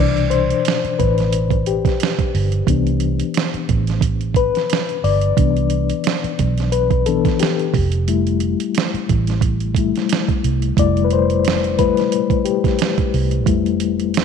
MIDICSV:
0, 0, Header, 1, 5, 480
1, 0, Start_track
1, 0, Key_signature, 0, "major"
1, 0, Tempo, 674157
1, 1907, Time_signature, 4, 2, 24, 8
1, 10144, End_track
2, 0, Start_track
2, 0, Title_t, "Reed electric piano"
2, 0, Program_c, 0, 4
2, 0, Note_on_c, 0, 47, 45
2, 0, Note_on_c, 0, 52, 50
2, 0, Note_on_c, 0, 62, 52
2, 0, Note_on_c, 0, 74, 94
2, 106, Control_c, 0, 64, 127
2, 217, Note_on_c, 0, 72, 91
2, 230, Note_off_c, 0, 74, 0
2, 705, Note_on_c, 0, 71, 82
2, 717, Note_off_c, 0, 72, 0
2, 1190, Note_on_c, 0, 67, 76
2, 1200, Note_off_c, 0, 71, 0
2, 1640, Note_off_c, 0, 67, 0
2, 1879, Note_off_c, 0, 52, 0
2, 1881, Note_off_c, 0, 47, 0
2, 1882, Note_off_c, 0, 62, 0
2, 1910, Note_on_c, 0, 52, 49
2, 1914, Note_on_c, 0, 59, 45
2, 1918, Note_on_c, 0, 62, 57
2, 3108, Note_on_c, 0, 71, 88
2, 3589, Note_on_c, 0, 74, 106
2, 3602, Note_off_c, 0, 71, 0
2, 3800, Note_off_c, 0, 52, 0
2, 3802, Note_off_c, 0, 59, 0
2, 3804, Note_off_c, 0, 62, 0
2, 3823, Note_on_c, 0, 52, 50
2, 3832, Note_on_c, 0, 59, 44
2, 3834, Note_on_c, 0, 62, 58
2, 4152, Note_off_c, 0, 52, 0
2, 4157, Note_off_c, 0, 59, 0
2, 4158, Note_off_c, 0, 62, 0
2, 4785, Note_on_c, 0, 71, 81
2, 4824, Note_off_c, 0, 74, 0
2, 5028, Note_on_c, 0, 69, 79
2, 5033, Note_off_c, 0, 71, 0
2, 5037, Note_on_c, 0, 52, 48
2, 5041, Note_on_c, 0, 59, 41
2, 5042, Note_on_c, 0, 62, 50
2, 5248, Note_off_c, 0, 52, 0
2, 5251, Note_off_c, 0, 59, 0
2, 5251, Note_off_c, 0, 62, 0
2, 5270, Note_on_c, 0, 67, 69
2, 5275, Note_off_c, 0, 69, 0
2, 5516, Control_c, 0, 64, 0
2, 5613, Note_off_c, 0, 67, 0
2, 5631, Control_c, 0, 64, 127
2, 5749, Note_on_c, 0, 55, 48
2, 5753, Note_on_c, 0, 57, 47
2, 5759, Note_on_c, 0, 64, 57
2, 6440, Note_off_c, 0, 55, 0
2, 6441, Note_off_c, 0, 57, 0
2, 6444, Note_off_c, 0, 64, 0
2, 6962, Note_on_c, 0, 55, 44
2, 6962, Note_on_c, 0, 57, 42
2, 6969, Note_on_c, 0, 64, 50
2, 7171, Note_off_c, 0, 55, 0
2, 7171, Note_off_c, 0, 57, 0
2, 7175, Note_off_c, 0, 64, 0
2, 7675, Note_on_c, 0, 55, 51
2, 7678, Note_on_c, 0, 57, 43
2, 7684, Note_on_c, 0, 64, 58
2, 7685, Note_on_c, 0, 74, 95
2, 7863, Note_on_c, 0, 71, 72
2, 7876, Note_off_c, 0, 74, 0
2, 7908, Note_off_c, 0, 71, 0
2, 7923, Note_on_c, 0, 72, 85
2, 8388, Note_off_c, 0, 55, 0
2, 8389, Note_off_c, 0, 57, 0
2, 8392, Note_on_c, 0, 71, 93
2, 8394, Note_off_c, 0, 64, 0
2, 8397, Note_on_c, 0, 55, 45
2, 8398, Note_on_c, 0, 57, 43
2, 8403, Note_on_c, 0, 64, 46
2, 8409, Note_off_c, 0, 72, 0
2, 8608, Note_off_c, 0, 55, 0
2, 8609, Note_off_c, 0, 57, 0
2, 8612, Note_off_c, 0, 64, 0
2, 8863, Note_on_c, 0, 67, 72
2, 8884, Note_off_c, 0, 71, 0
2, 9316, Note_off_c, 0, 67, 0
2, 9592, Note_on_c, 0, 55, 54
2, 9599, Note_on_c, 0, 57, 48
2, 9599, Note_on_c, 0, 64, 54
2, 10144, Note_off_c, 0, 55, 0
2, 10144, Note_off_c, 0, 57, 0
2, 10144, Note_off_c, 0, 64, 0
2, 10144, End_track
3, 0, Start_track
3, 0, Title_t, "Fingered electric bass"
3, 0, Program_c, 1, 33
3, 0, Note_on_c, 1, 36, 85
3, 367, Note_off_c, 1, 36, 0
3, 710, Note_on_c, 1, 33, 79
3, 1291, Note_off_c, 1, 33, 0
3, 1669, Note_on_c, 1, 31, 78
3, 1858, Note_off_c, 1, 31, 0
3, 1902, Note_on_c, 1, 36, 89
3, 2285, Note_off_c, 1, 36, 0
3, 2630, Note_on_c, 1, 33, 76
3, 3211, Note_off_c, 1, 33, 0
3, 3587, Note_on_c, 1, 31, 86
3, 3778, Note_off_c, 1, 31, 0
3, 3827, Note_on_c, 1, 36, 95
3, 4208, Note_off_c, 1, 36, 0
3, 4554, Note_on_c, 1, 35, 77
3, 5133, Note_off_c, 1, 35, 0
3, 5513, Note_on_c, 1, 29, 93
3, 6082, Note_off_c, 1, 29, 0
3, 6477, Note_on_c, 1, 33, 76
3, 7054, Note_off_c, 1, 33, 0
3, 7435, Note_on_c, 1, 36, 73
3, 7622, Note_off_c, 1, 36, 0
3, 7669, Note_on_c, 1, 29, 91
3, 8491, Note_off_c, 1, 29, 0
3, 9356, Note_on_c, 1, 36, 87
3, 9587, Note_off_c, 1, 36, 0
3, 9587, Note_on_c, 1, 29, 98
3, 10144, Note_off_c, 1, 29, 0
3, 10144, End_track
4, 0, Start_track
4, 0, Title_t, "Muted fingered electric bass strokes"
4, 601, Note_on_c, 9, 29, 42
4, 672, Note_off_c, 9, 29, 0
4, 2521, Note_on_c, 9, 29, 42
4, 2592, Note_off_c, 9, 29, 0
4, 4444, Note_on_c, 9, 29, 43
4, 4515, Note_off_c, 9, 29, 0
4, 6365, Note_on_c, 9, 29, 44
4, 6436, Note_off_c, 9, 29, 0
4, 10144, End_track
5, 0, Start_track
5, 0, Title_t, "Drums"
5, 120, Note_on_c, 9, 42, 29
5, 191, Note_off_c, 9, 42, 0
5, 222, Note_on_c, 9, 42, 63
5, 293, Note_off_c, 9, 42, 0
5, 359, Note_on_c, 9, 42, 41
5, 431, Note_off_c, 9, 42, 0
5, 463, Note_on_c, 9, 42, 72
5, 485, Note_on_c, 9, 38, 102
5, 534, Note_off_c, 9, 42, 0
5, 556, Note_off_c, 9, 38, 0
5, 602, Note_on_c, 9, 42, 32
5, 674, Note_off_c, 9, 42, 0
5, 708, Note_on_c, 9, 36, 73
5, 709, Note_on_c, 9, 42, 60
5, 780, Note_off_c, 9, 36, 0
5, 780, Note_off_c, 9, 42, 0
5, 839, Note_on_c, 9, 42, 38
5, 856, Note_on_c, 9, 38, 28
5, 910, Note_off_c, 9, 42, 0
5, 928, Note_off_c, 9, 38, 0
5, 944, Note_on_c, 9, 42, 78
5, 1015, Note_off_c, 9, 42, 0
5, 1071, Note_on_c, 9, 36, 84
5, 1077, Note_on_c, 9, 42, 30
5, 1143, Note_off_c, 9, 36, 0
5, 1148, Note_off_c, 9, 42, 0
5, 1184, Note_on_c, 9, 42, 63
5, 1256, Note_off_c, 9, 42, 0
5, 1316, Note_on_c, 9, 36, 83
5, 1321, Note_on_c, 9, 42, 37
5, 1334, Note_on_c, 9, 38, 30
5, 1387, Note_off_c, 9, 36, 0
5, 1392, Note_off_c, 9, 42, 0
5, 1406, Note_off_c, 9, 38, 0
5, 1424, Note_on_c, 9, 42, 82
5, 1447, Note_on_c, 9, 38, 95
5, 1495, Note_off_c, 9, 42, 0
5, 1518, Note_off_c, 9, 38, 0
5, 1556, Note_on_c, 9, 36, 87
5, 1559, Note_on_c, 9, 42, 32
5, 1628, Note_off_c, 9, 36, 0
5, 1630, Note_off_c, 9, 42, 0
5, 1672, Note_on_c, 9, 46, 47
5, 1743, Note_off_c, 9, 46, 0
5, 1794, Note_on_c, 9, 42, 46
5, 1865, Note_off_c, 9, 42, 0
5, 1900, Note_on_c, 9, 36, 100
5, 1909, Note_on_c, 9, 42, 84
5, 1972, Note_off_c, 9, 36, 0
5, 1981, Note_off_c, 9, 42, 0
5, 2041, Note_on_c, 9, 42, 33
5, 2112, Note_off_c, 9, 42, 0
5, 2136, Note_on_c, 9, 42, 64
5, 2207, Note_off_c, 9, 42, 0
5, 2275, Note_on_c, 9, 42, 43
5, 2346, Note_off_c, 9, 42, 0
5, 2380, Note_on_c, 9, 42, 74
5, 2402, Note_on_c, 9, 38, 101
5, 2451, Note_off_c, 9, 42, 0
5, 2473, Note_off_c, 9, 38, 0
5, 2521, Note_on_c, 9, 42, 33
5, 2592, Note_off_c, 9, 42, 0
5, 2627, Note_on_c, 9, 42, 65
5, 2628, Note_on_c, 9, 36, 77
5, 2698, Note_off_c, 9, 42, 0
5, 2699, Note_off_c, 9, 36, 0
5, 2758, Note_on_c, 9, 42, 35
5, 2775, Note_on_c, 9, 38, 28
5, 2829, Note_off_c, 9, 42, 0
5, 2846, Note_off_c, 9, 38, 0
5, 2855, Note_on_c, 9, 36, 84
5, 2864, Note_on_c, 9, 42, 85
5, 2926, Note_off_c, 9, 36, 0
5, 2935, Note_off_c, 9, 42, 0
5, 2996, Note_on_c, 9, 42, 33
5, 3067, Note_off_c, 9, 42, 0
5, 3093, Note_on_c, 9, 36, 81
5, 3104, Note_on_c, 9, 42, 62
5, 3164, Note_off_c, 9, 36, 0
5, 3175, Note_off_c, 9, 42, 0
5, 3240, Note_on_c, 9, 42, 34
5, 3254, Note_on_c, 9, 38, 28
5, 3312, Note_off_c, 9, 42, 0
5, 3325, Note_off_c, 9, 38, 0
5, 3344, Note_on_c, 9, 42, 79
5, 3367, Note_on_c, 9, 38, 96
5, 3415, Note_off_c, 9, 42, 0
5, 3438, Note_off_c, 9, 38, 0
5, 3482, Note_on_c, 9, 42, 33
5, 3553, Note_off_c, 9, 42, 0
5, 3591, Note_on_c, 9, 46, 49
5, 3662, Note_off_c, 9, 46, 0
5, 3713, Note_on_c, 9, 42, 46
5, 3784, Note_off_c, 9, 42, 0
5, 3823, Note_on_c, 9, 36, 99
5, 3827, Note_on_c, 9, 42, 89
5, 3894, Note_off_c, 9, 36, 0
5, 3898, Note_off_c, 9, 42, 0
5, 3962, Note_on_c, 9, 42, 32
5, 4034, Note_off_c, 9, 42, 0
5, 4057, Note_on_c, 9, 42, 63
5, 4128, Note_off_c, 9, 42, 0
5, 4198, Note_on_c, 9, 42, 44
5, 4269, Note_off_c, 9, 42, 0
5, 4300, Note_on_c, 9, 42, 71
5, 4322, Note_on_c, 9, 38, 103
5, 4371, Note_off_c, 9, 42, 0
5, 4393, Note_off_c, 9, 38, 0
5, 4445, Note_on_c, 9, 42, 32
5, 4516, Note_off_c, 9, 42, 0
5, 4549, Note_on_c, 9, 42, 60
5, 4552, Note_on_c, 9, 36, 78
5, 4620, Note_off_c, 9, 42, 0
5, 4623, Note_off_c, 9, 36, 0
5, 4682, Note_on_c, 9, 42, 38
5, 4700, Note_on_c, 9, 38, 30
5, 4753, Note_off_c, 9, 42, 0
5, 4771, Note_off_c, 9, 38, 0
5, 4787, Note_on_c, 9, 42, 78
5, 4858, Note_off_c, 9, 42, 0
5, 4916, Note_on_c, 9, 36, 80
5, 4918, Note_on_c, 9, 42, 29
5, 4988, Note_off_c, 9, 36, 0
5, 4989, Note_off_c, 9, 42, 0
5, 5027, Note_on_c, 9, 42, 64
5, 5098, Note_off_c, 9, 42, 0
5, 5161, Note_on_c, 9, 36, 80
5, 5163, Note_on_c, 9, 42, 36
5, 5177, Note_on_c, 9, 38, 29
5, 5233, Note_off_c, 9, 36, 0
5, 5234, Note_off_c, 9, 42, 0
5, 5248, Note_off_c, 9, 38, 0
5, 5265, Note_on_c, 9, 42, 83
5, 5288, Note_on_c, 9, 38, 91
5, 5336, Note_off_c, 9, 42, 0
5, 5359, Note_off_c, 9, 38, 0
5, 5407, Note_on_c, 9, 42, 32
5, 5478, Note_off_c, 9, 42, 0
5, 5508, Note_on_c, 9, 36, 90
5, 5513, Note_on_c, 9, 46, 48
5, 5579, Note_off_c, 9, 36, 0
5, 5584, Note_off_c, 9, 46, 0
5, 5637, Note_on_c, 9, 42, 44
5, 5708, Note_off_c, 9, 42, 0
5, 5752, Note_on_c, 9, 42, 88
5, 5823, Note_off_c, 9, 42, 0
5, 5886, Note_on_c, 9, 42, 31
5, 5957, Note_off_c, 9, 42, 0
5, 5983, Note_on_c, 9, 42, 63
5, 6054, Note_off_c, 9, 42, 0
5, 6123, Note_on_c, 9, 42, 45
5, 6195, Note_off_c, 9, 42, 0
5, 6227, Note_on_c, 9, 42, 68
5, 6250, Note_on_c, 9, 38, 103
5, 6298, Note_off_c, 9, 42, 0
5, 6321, Note_off_c, 9, 38, 0
5, 6370, Note_on_c, 9, 42, 32
5, 6441, Note_off_c, 9, 42, 0
5, 6475, Note_on_c, 9, 36, 77
5, 6475, Note_on_c, 9, 42, 65
5, 6546, Note_off_c, 9, 36, 0
5, 6546, Note_off_c, 9, 42, 0
5, 6602, Note_on_c, 9, 42, 37
5, 6620, Note_on_c, 9, 38, 29
5, 6674, Note_off_c, 9, 42, 0
5, 6691, Note_off_c, 9, 38, 0
5, 6701, Note_on_c, 9, 36, 86
5, 6708, Note_on_c, 9, 42, 77
5, 6772, Note_off_c, 9, 36, 0
5, 6779, Note_off_c, 9, 42, 0
5, 6838, Note_on_c, 9, 42, 31
5, 6909, Note_off_c, 9, 42, 0
5, 6939, Note_on_c, 9, 36, 81
5, 6951, Note_on_c, 9, 42, 68
5, 7010, Note_off_c, 9, 36, 0
5, 7022, Note_off_c, 9, 42, 0
5, 7088, Note_on_c, 9, 42, 36
5, 7102, Note_on_c, 9, 38, 30
5, 7159, Note_off_c, 9, 42, 0
5, 7173, Note_off_c, 9, 38, 0
5, 7186, Note_on_c, 9, 42, 84
5, 7210, Note_on_c, 9, 38, 93
5, 7257, Note_off_c, 9, 42, 0
5, 7281, Note_off_c, 9, 38, 0
5, 7323, Note_on_c, 9, 36, 84
5, 7325, Note_on_c, 9, 42, 30
5, 7394, Note_off_c, 9, 36, 0
5, 7396, Note_off_c, 9, 42, 0
5, 7436, Note_on_c, 9, 42, 68
5, 7507, Note_off_c, 9, 42, 0
5, 7562, Note_on_c, 9, 42, 47
5, 7633, Note_off_c, 9, 42, 0
5, 7667, Note_on_c, 9, 36, 98
5, 7674, Note_on_c, 9, 42, 89
5, 7738, Note_off_c, 9, 36, 0
5, 7746, Note_off_c, 9, 42, 0
5, 7810, Note_on_c, 9, 42, 31
5, 7881, Note_off_c, 9, 42, 0
5, 7907, Note_on_c, 9, 42, 60
5, 7978, Note_off_c, 9, 42, 0
5, 8045, Note_on_c, 9, 42, 42
5, 8116, Note_off_c, 9, 42, 0
5, 8150, Note_on_c, 9, 42, 71
5, 8172, Note_on_c, 9, 38, 104
5, 8221, Note_off_c, 9, 42, 0
5, 8243, Note_off_c, 9, 38, 0
5, 8289, Note_on_c, 9, 42, 33
5, 8360, Note_off_c, 9, 42, 0
5, 8392, Note_on_c, 9, 42, 62
5, 8393, Note_on_c, 9, 36, 73
5, 8463, Note_off_c, 9, 42, 0
5, 8465, Note_off_c, 9, 36, 0
5, 8525, Note_on_c, 9, 42, 40
5, 8542, Note_on_c, 9, 38, 29
5, 8596, Note_off_c, 9, 42, 0
5, 8613, Note_off_c, 9, 38, 0
5, 8630, Note_on_c, 9, 42, 79
5, 8701, Note_off_c, 9, 42, 0
5, 8757, Note_on_c, 9, 36, 77
5, 8761, Note_on_c, 9, 42, 33
5, 8829, Note_off_c, 9, 36, 0
5, 8833, Note_off_c, 9, 42, 0
5, 8868, Note_on_c, 9, 42, 69
5, 8939, Note_off_c, 9, 42, 0
5, 9001, Note_on_c, 9, 36, 84
5, 9005, Note_on_c, 9, 42, 35
5, 9019, Note_on_c, 9, 38, 29
5, 9072, Note_off_c, 9, 36, 0
5, 9076, Note_off_c, 9, 42, 0
5, 9090, Note_off_c, 9, 38, 0
5, 9104, Note_on_c, 9, 42, 84
5, 9127, Note_on_c, 9, 38, 90
5, 9175, Note_off_c, 9, 42, 0
5, 9199, Note_off_c, 9, 38, 0
5, 9241, Note_on_c, 9, 36, 88
5, 9241, Note_on_c, 9, 42, 31
5, 9312, Note_off_c, 9, 36, 0
5, 9312, Note_off_c, 9, 42, 0
5, 9356, Note_on_c, 9, 46, 49
5, 9427, Note_off_c, 9, 46, 0
5, 9479, Note_on_c, 9, 42, 47
5, 9550, Note_off_c, 9, 42, 0
5, 9585, Note_on_c, 9, 36, 103
5, 9590, Note_on_c, 9, 42, 83
5, 9656, Note_off_c, 9, 36, 0
5, 9662, Note_off_c, 9, 42, 0
5, 9727, Note_on_c, 9, 42, 32
5, 9798, Note_off_c, 9, 42, 0
5, 9826, Note_on_c, 9, 42, 65
5, 9897, Note_off_c, 9, 42, 0
5, 9965, Note_on_c, 9, 42, 44
5, 10036, Note_off_c, 9, 42, 0
5, 10069, Note_on_c, 9, 42, 70
5, 10091, Note_on_c, 9, 38, 111
5, 10140, Note_off_c, 9, 42, 0
5, 10144, Note_off_c, 9, 38, 0
5, 10144, End_track
0, 0, End_of_file